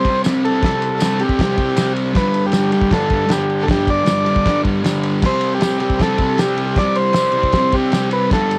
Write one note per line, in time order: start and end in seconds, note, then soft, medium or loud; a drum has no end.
0.00 0.23 C3 medium
0.00 0.22 C5 medium
0.05 0.28 C4 medium
0.05 kick medium
0.05 ride medium
0.10 0.26 G3 medium
0.24 0.61 C3 loud
0.24 0.64 G3 medium
0.24 snare loud
0.24 ride loud
0.24 tambourine loud
0.29 0.65 C4 loud
0.45 1.23 A4 medium
0.45 ride medium
0.63 1.00 C3 loud
0.63 1.03 G3 medium
0.63 1.04 C4 loud
0.63 kick loud
0.63 snare loud
0.63 ride loud
0.82 ride medium
1.00 1.38 C3 medium
1.00 1.24 G3 medium
1.00 snare loud
1.00 ride loud
1.00 tambourine loud
1.05 1.18 C4 loud
1.19 1.42 C4 medium
1.19 1.93 G4 medium
1.19 ride medium
1.25 1.41 G3 medium
1.29 kick medium
1.39 1.75 C3 medium
1.39 1.61 G3 medium
1.39 kick loud
1.39 snare loud
1.39 ride loud
1.44 1.56 C4 medium
1.57 1.79 G3 medium
1.57 1.79 C4 medium
1.57 kick medium
1.57 ride medium
1.77 2.14 C3 loud
1.77 2.17 G3 loud
1.77 snare loud
1.77 ride loud
1.77 tambourine loud
1.81 2.16 C4 loud
1.96 ride medium
2.13 2.52 G2 medium
2.13 2.54 D3 loud
2.13 kick loud
2.13 snare loud
2.13 ride loud
2.17 2.57 G3 loud
2.17 2.46 B4 loud
2.34 ride medium
2.46 2.72 G4 medium
2.52 2.90 G2 medium
2.52 2.74 D3 medium
2.52 snare loud
2.52 ride loud
2.52 tambourine loud
2.57 2.71 G3 medium
2.71 2.95 G3 medium
2.71 2.93 G4 medium
2.71 ride medium
2.75 2.93 D3 medium
2.82 kick medium
2.91 3.25 G2 medium
2.91 3.12 D3 medium
2.91 3.32 A4 medium
2.91 kick loud
2.91 snare loud
2.91 ride loud
2.95 3.09 G3 medium
3.10 3.28 D3 medium
3.10 3.31 G3 medium
3.10 kick medium
3.10 ride medium
3.26 3.64 G2 medium
3.26 3.67 D3 loud
3.26 snare loud
3.26 ride loud
3.31 3.69 G3 loud
3.31 3.66 G4 medium
3.31 tambourine loud
3.50 ride medium
3.63 4.03 G2 medium
3.63 3.69 A4 medium
3.68 4.05 D3 medium
3.68 4.08 G3 medium
3.68 3.90 G4 loud
3.68 kick loud
3.68 snare loud
3.68 ride loud
3.87 4.62 D5 loud
3.87 kick medium
3.87 ride medium
4.04 4.43 G2 medium
4.04 4.27 D3 medium
4.04 snare loud
4.04 ride loud
4.04 tambourine loud
4.09 4.24 G3 medium
4.24 4.47 G3 medium
4.24 ride medium
4.29 4.44 D3 medium
4.36 kick medium
4.44 4.82 G2 medium
4.44 4.66 D3 medium
4.44 4.63 G3 medium
4.44 kick loud
4.44 snare loud
4.44 ride loud
4.63 4.86 G3 medium
4.63 kick medium
4.63 ride medium
4.67 4.83 D3 medium
4.83 5.21 G2 medium
4.83 5.22 D3 medium
4.83 5.25 G3 medium
4.83 snare loud
4.83 ride loud
4.83 tambourine medium
5.03 ride medium
5.22 5.59 C3 medium
5.22 5.63 G3 medium
5.22 5.54 C5 loud
5.22 kick loud
5.22 snare loud
5.22 crash loud
5.27 5.63 C4 loud
5.41 ride medium
5.54 5.80 G4 loud
5.59 5.98 C3 medium
5.59 5.83 G3 medium
5.59 snare loud
5.59 ride loud
5.59 tambourine medium
5.64 5.79 C4 medium
5.79 6.02 C4 medium
5.79 6.01 G4 medium
5.79 ride medium
5.83 6.00 G3 medium
5.90 kick medium
5.99 6.38 C3 medium
5.99 6.22 G3 medium
5.99 6.41 A4 medium
5.99 kick loud
5.99 snare loud
5.99 ride loud
6.03 6.17 C4 medium
6.18 6.41 G3 medium
6.18 6.43 C4 medium
6.18 kick medium
6.18 ride medium
6.38 6.76 C3 medium
6.38 6.78 G4 medium
6.38 snare loud
6.38 ride loud
6.38 tambourine medium
6.42 6.79 G3 loud
6.42 6.80 C4 medium
6.57 ride medium
6.76 7.13 C3 medium
6.76 7.16 G3 medium
6.76 6.97 D5 loud
6.76 kick loud
6.76 snare loud
6.76 ride loud
6.81 7.17 C4 medium
6.95 7.76 C5 loud
6.95 ride medium
7.13 7.52 C3 medium
7.13 7.37 G3 medium
7.13 snare loud
7.13 ride loud
7.13 tambourine loud
7.18 7.32 C4 medium
7.32 7.57 C4 medium
7.32 ride medium
7.38 7.54 G3 medium
7.43 kick medium
7.52 7.91 C3 medium
7.52 7.77 G3 medium
7.52 kick loud
7.52 snare loud
7.52 ride loud
7.58 7.72 C4 medium
7.72 7.95 C4 medium
7.72 8.09 G4 loud
7.72 kick medium
7.72 ride medium
7.78 7.93 G3 medium
7.92 8.30 C3 medium
7.92 8.31 G3 medium
7.92 snare loud
7.92 ride loud
7.92 tambourine medium
7.96 8.32 C4 loud
8.11 8.30 B4 loud
8.11 ride medium
8.30 8.59 G2 medium
8.30 8.59 D3 loud
8.30 8.59 A4 loud
8.30 kick loud
8.30 snare loud
8.30 ride loud
8.34 8.59 G3 loud
8.51 ride medium